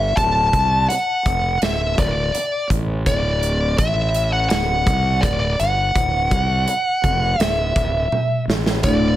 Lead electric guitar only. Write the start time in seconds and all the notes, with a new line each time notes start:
0.00 E5
0.17 A5
0.89 F#5
1.63 E5
1.99 D5
3.07 D5
3.79 E5
4.33 F#5
4.49 F#5
5.21 D5
5.40 D5
5.60 F#5
7.41 E5
8.84 D5